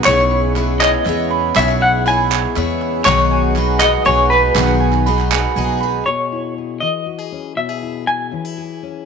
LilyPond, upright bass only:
\new Staff \with { instrumentName = "Upright bass" } { \clef bass \time 3/4 \key cis \dorian \tempo 4 = 120 b,,2 e,4 | b,,2 e,4 | b,,2 b,,4 | b,,2 b,,4 |
r2. | r2. | }